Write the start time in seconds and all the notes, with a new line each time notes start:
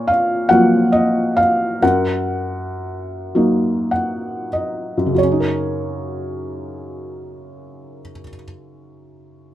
Already playing: A#2 F4 C#5
0.08 F5
0.49 F3 F#3 A#3 F#5
0.92 D#5
1.37 F5
1.82 F#2 A#4 F#5
3.35 F#3 A#3 D#4
3.91 F#5
4.53 D#5
4.97 F#2
5.06 C#3
5.15 F#3 C#5
5.23 C#4
5.32 D#4
5.40 A#4